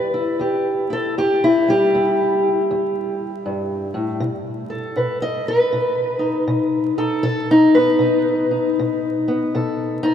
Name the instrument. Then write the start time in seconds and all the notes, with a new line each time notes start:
steel-string acoustic guitar
Already playing: E2 E4 G4 B4
0.14 E4
0.39 E2 G4
0.90 E4 A4
1.18 E2 G4
1.44 E4
1.68 G3 G4
1.95 E2 E4
2.71 E2
3.46 G2
3.94 A2
4.20 B2
4.70 A4
4.96 B2 B4
5.22 D#5
5.48 B4
5.72 B2
6.19 D#4
6.47 B2
6.98 D#4 A4
7.23 B2 A4
7.51 D#4
7.75 B3 B4
7.99 B2 D#4
8.51 D#4
8.79 B2
9.28 B3
9.55 B2 A4
10.03 D#4 A4